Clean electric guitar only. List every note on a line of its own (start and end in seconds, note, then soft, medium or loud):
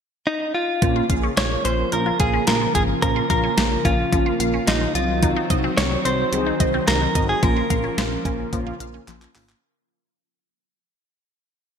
0.27 0.54 D#4 medium
0.55 1.06 F4 loud
1.38 1.65 C#5 loud
1.65 1.92 C5 loud
1.93 2.20 A#4 loud
2.20 2.47 G#4 loud
2.47 2.75 A#4 medium
2.75 2.82 G#4 medium
3.02 3.29 A#4 loud
3.30 3.87 A#4 loud
3.85 4.67 F4 loud
4.68 4.95 D#4 medium
4.95 5.46 F4 medium
5.77 6.05 C#5 loud
6.05 6.87 C5 loud
6.88 7.26 A#4 medium
7.29 7.43 G#4 medium
7.43 9.08 A#4 medium